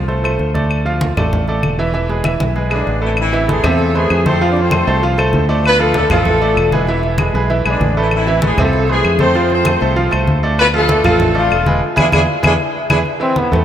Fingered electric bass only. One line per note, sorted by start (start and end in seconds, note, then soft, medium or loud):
0.00 0.36 C2 medium
0.40 1.11 D2 loud
1.17 1.60 A1 medium
1.63 2.35 E1 medium
2.40 2.83 B1 medium
2.87 3.59 A1 loud
3.64 4.07 E2 loud
4.10 4.82 F2 loud
4.87 5.31 C2 loud
5.34 6.06 D2 loud
6.11 6.54 A1 medium
6.57 7.29 E1 loud
7.34 7.63 B1 loud
7.65 7.80 B1 medium
7.80 8.52 A1 loud
8.58 9.01 C2 loud
9.04 9.76 F2 loud
9.82 10.11 C2 medium
10.13 10.27 C2 medium
10.28 11.00 D2 loud
11.05 11.48 A1 medium
11.52 11.80 E1 loud
11.98 12.10 E2 loud
12.13 12.25 E2 loud
12.44 12.56 E2 loud
12.90 13.02 E2 loud
13.52 13.65 E2 medium